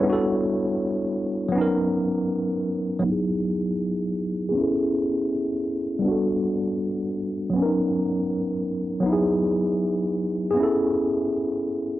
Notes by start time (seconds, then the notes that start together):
Already playing: E4 C#5
0.00 G3 B3
0.06 D4 F#4
0.12 A4
1.49 F#3 B3
1.55 C#4 D#4
1.61 A#4
2.99 F#3 B3
3.05 D#4 E4
3.12 G#4
4.49 B3 G#4
4.55 C#4 E4
4.62 A4
5.99 G3 B3
6.05 D4 F#4
6.11 A4
7.50 F#3 B3
7.56 C#4 D4
7.62 D#4 A#4
9.00 F#3 B3
9.06 D#4 E4
9.13 G#4
10.51 B3 G#4
10.57 C#4 E4
10.63 A4